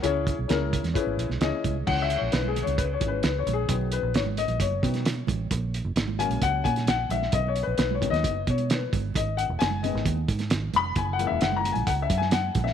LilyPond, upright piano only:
<<
  \new Staff \with { instrumentName = "Upright piano" } { \time 4/4 \key cis \dorian \tempo 4 = 132 <cis' e' gis' ais' cis'' fis''>8 r8 <cis' e' gis' ais'>8 r8 <cis' e' gis' b'>8 r8 <cis' e' gis' dis''>8 r8 | \tuplet 3/2 { fis''8 e''8 cis''8 b'8 gis'8 cis''8 b'8 cis''8 b'8 b'8 cis''8 gis'8 } | r8 b'8 cis''8 dis''8 cis''2~ | cis''8 r4 gis''8 fis''8 gis''8 fis''8 e''8 |
\tuplet 3/2 { dis''8 cis''8 b'8 b'8 cis''8 dis''8~ } dis''8 cis''8 b'8 r8 | dis''8 fis''8 gis''8 dis''8 r4. b''8 | \tuplet 3/2 { gis''8 fis''8 e''8 fis''8 ais''8 gis''8 fis''8 e''8 gis''8 fis''4 e''8 } | }
  \new Staff \with { instrumentName = "Upright piano" } { \clef bass \time 4/4 \key cis \dorian r1 | <e gis cis'>4. r4 <e gis cis'>8 r4 | <dis fis b>2~ <dis fis b>8 <dis fis b>8 r4 | r4. <cis fis ais>4. r4 |
r4. <dis fis b>8 r2 | r4. <dis gis b>8 r2 | r8 <e gis ais>2.~ <e gis ais>8 | }
>>